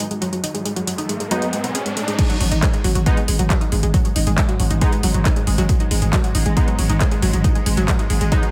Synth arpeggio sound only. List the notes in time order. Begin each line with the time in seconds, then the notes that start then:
0.11 G#3
0.22 F#3
0.33 F#3
0.44 D#4
0.54 G#3
0.65 G#3
0.76 F#3
0.87 F#3
0.98 D#4
1.09 G#3
1.20 G#3
1.31 F#3
1.42 F#3
1.53 G#3
1.64 B3
1.75 G#4
1.86 G#3
1.97 A3
2.08 G#3
2.19 G#3
2.30 F#3
2.41 F#3
2.52 D#4
2.62 G#3
2.73 G#3
2.84 F#3
2.95 F#3
3.06 D#4
3.17 G#3
3.28 G#3
3.39 F#3
3.50 F#3
3.61 D#4
3.72 G#3
3.83 G#3
3.94 F#3
4.05 F#3
4.16 D#4
4.27 G#3
4.38 G#3
4.49 F#3
4.60 F#3
4.71 D#4
4.82 G#3
4.93 G#3
5.04 F#3
5.14 F#3
5.25 D#4
5.36 G#3
5.47 G#3
5.58 F#3
5.69 F#3
5.80 D#4
5.91 G#3
6.02 G#3
6.13 F#3
6.24 F#3
6.35 D#4
6.46 G#3
6.57 G#3
6.68 F#3
6.79 F#3
6.90 D#4
7.01 G#3
7.12 G#3
7.22 F#3
7.33 F#3
7.44 D#4
7.55 G#3
7.66 G#3
7.77 F#3
7.88 F#3
7.99 D#4
8.10 G#3
8.21 G#3
8.32 F#3
8.43 F#3